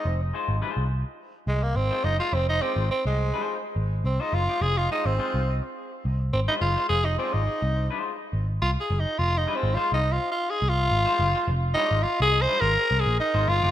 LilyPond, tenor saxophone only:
\new Staff \with { instrumentName = "Tenor saxophone" } { \time 4/4 \key f \dorian \tempo 4 = 105 ees'16 r2 r16 aes16 bes16 c'8 ees'16 f'16 | c'16 ees'16 c'8 c'16 aes4 r8. c'16 ees'16 f'8 | aes'16 f'16 ees'16 c'4 r4 r16 c'16 ees'16 f'8 | aes'16 ees'16 c'16 ees'4 r4 r16 \tuplet 3/2 { f'8 aes'8 ees'8 } |
\tuplet 3/2 { f'8 ees'8 c'8 f'8 ees'8 f'8 f'8 aes'8 f'8~ } f'4~ | f'16 r16 ees'8 \tuplet 3/2 { f'8 aes'8 c''8 bes'4 aes'8 } ees'8 f'8 | }